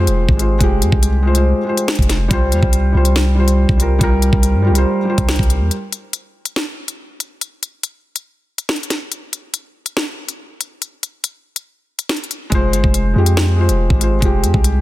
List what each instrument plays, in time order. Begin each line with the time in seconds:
Already playing: felt piano G#3 F4 G4
0.00 felt piano C5
0.07 808-style bass E1, closed hi-hat
0.29 808-style bass G#1, kick
0.37 felt piano G#3 F4, closed hi-hat
0.42 felt piano C5
0.59 808-style bass F1, felt piano G#3 F4, kick, closed hi-hat
0.63 felt piano G4
0.82 808-style bass F2, closed hi-hat
0.92 808-style bass C2, kick
1.03 closed hi-hat
1.23 felt piano G#3 F4
1.27 felt piano C5
1.33 felt piano G#3 F4, closed hi-hat
1.37 felt piano C5
1.64 felt piano G#3 F4
1.69 felt piano C5
1.77 closed hi-hat
1.88 snare, closed hi-hat
1.95 808-style bass F1, kick, closed hi-hat
2.02 closed hi-hat
2.09 snare, closed hi-hat
2.28 808-style bass C2, felt piano G3 F4, kick, closed hi-hat
2.33 felt piano C5
2.52 808-style bass E2, closed hi-hat
2.63 808-style bass C2, kick
2.73 closed hi-hat
2.92 808-style bass C2, felt piano G3 F4
2.97 felt piano C5
3.05 closed hi-hat
3.16 snare
3.35 felt piano G3 F4
3.40 felt piano C5
3.48 closed hi-hat
3.69 808-style bass C2, kick
3.77 felt piano G3 F4, closed hi-hat
3.82 felt piano A#4
3.99 808-style bass C2, felt piano G3 F4, kick, closed hi-hat
4.03 felt piano A#4
4.22 closed hi-hat
4.33 808-style bass C2, kick
4.43 closed hi-hat
4.54 808-style bass G2
4.62 felt piano G3 F4
4.67 808-style bass C2, felt piano G4
4.73 felt piano G3 F4, closed hi-hat
4.78 felt piano C5
5.05 felt piano G3 F4
5.10 felt piano C5
5.18 808-style bass C2, kick, closed hi-hat
5.29 snare, closed hi-hat
5.36 808-style bass C2, kick, closed hi-hat
5.43 closed hi-hat
5.50 closed hi-hat
5.60 808-style bass E2
5.71 closed hi-hat
5.92 closed hi-hat
6.13 closed hi-hat
6.45 closed hi-hat
6.56 snare
6.88 closed hi-hat
7.20 closed hi-hat
7.41 closed hi-hat
7.63 closed hi-hat
7.83 closed hi-hat
8.16 closed hi-hat
8.58 closed hi-hat
8.69 snare, closed hi-hat
8.76 closed hi-hat
8.83 closed hi-hat
8.90 snare, closed hi-hat
9.12 closed hi-hat
9.33 closed hi-hat
9.54 closed hi-hat
9.86 closed hi-hat
9.97 snare
10.28 closed hi-hat
10.61 closed hi-hat
10.82 closed hi-hat
11.03 closed hi-hat
11.24 closed hi-hat
11.56 closed hi-hat
11.99 closed hi-hat
12.09 snare, closed hi-hat
12.16 closed hi-hat
12.24 closed hi-hat
12.31 closed hi-hat
12.50 808-style bass F1, felt piano G#3 F4, kick, closed hi-hat
12.54 felt piano C5
12.73 808-style bass G1, closed hi-hat
12.84 808-style bass F1, kick
12.94 closed hi-hat
13.13 808-style bass F2, felt piano G#3 F4
13.18 felt piano G4
13.26 closed hi-hat
13.37 snare
13.56 felt piano G#3 F4
13.61 felt piano C5
13.69 808-style bass E1, closed hi-hat
13.90 808-style bass G#1, kick
13.99 felt piano G#3 F4, closed hi-hat
14.03 felt piano C5
14.20 808-style bass F1, felt piano G#3 F4, kick, closed hi-hat
14.25 felt piano G4
14.43 808-style bass F2, closed hi-hat
14.54 808-style bass C2, kick
14.64 closed hi-hat